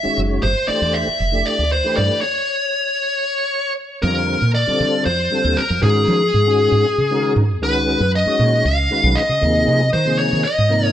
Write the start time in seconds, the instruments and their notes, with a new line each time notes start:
Already playing: lead electric guitar E5
0.03 tonewheel organ D#3 G#3 C#4 F#4 C#5, muted fretless electric bass stroke
0.18 fretless electric bass F#1
0.43 fretless electric bass G1, lead electric guitar C5
0.67 tonewheel organ E3 A3 D4 G4 C5, lead electric guitar D5, muted fretless electric bass stroke
0.82 fretless electric bass E2
0.94 lead electric guitar E5
1.08 muted fretless electric bass stroke
1.20 fretless electric bass F1
1.32 tonewheel organ E3 A3 D4 G4 D5
1.46 lead electric guitar D5
1.59 fretless electric bass D2
1.72 lead electric guitar C5
1.84 tonewheel organ E3 A3 D4 G4 B4
1.97 fretless electric bass G2, lead electric guitar D5
2.21 lead electric guitar C#5
4.02 fretless electric bass F2, tonewheel organ D3 G3 C4 F4 A#4, lead electric guitar A#4
4.42 fretless electric bass A#2
4.55 lead electric guitar D5
4.67 tonewheel organ D3 G3 C4 F4 A4, muted fretless electric bass stroke
4.80 fretless electric bass D3
5.06 fretless electric bass F2, lead electric guitar C5
5.30 tonewheel organ D3 G3 C4 F4 A4
5.45 fretless electric bass D#2
5.57 lead electric guitar A#4, muted fretless electric bass stroke
5.70 fretless electric bass F2
5.82 fretless electric bass G#2, tonewheel organ D#3 G#3 C#4 F#4 A#4, lead electric guitar G#4
6.08 fretless electric bass F3
6.34 fretless electric bass G#2
6.46 tonewheel organ D#3 G#3 C#4 F#4 G#4
6.72 fretless electric bass G#2
6.98 fretless electric bass C#3
7.10 tonewheel organ D#3 G#3 C#4 F#4 A#4
7.36 fretless electric bass G#2
7.62 fretless electric bass C#2, tonewheel organ D#3 G#3 C#4 F#4 B4, lead electric guitar B4
8.00 fretless electric bass F#2
8.15 lead electric guitar D#5
8.26 tonewheel organ D#3 G#3 C#4 F#4 C#5, muted fretless electric bass stroke
8.39 fretless electric bass A#2
8.65 fretless electric bass C#2, lead electric guitar F5
8.90 tonewheel organ D#3 G#3 C#4 F#4 B4
9.04 fretless electric bass B1
9.15 lead electric guitar D#5
9.29 fretless electric bass C#3
9.41 fretless electric bass D#2, tonewheel organ C3 F3 A#3 D#4 G#4
9.68 fretless electric bass C3
9.93 fretless electric bass D#3, lead electric guitar C5
10.05 tonewheel organ C3 F3 A#3 D#4 G#4
10.18 lead electric guitar C#5
10.33 fretless electric bass D#3
10.44 lead electric guitar D#5
10.58 fretless electric bass G#2
10.69 tonewheel organ C3 F3 A#3 D#4 A#4
10.86 lead electric guitar C#5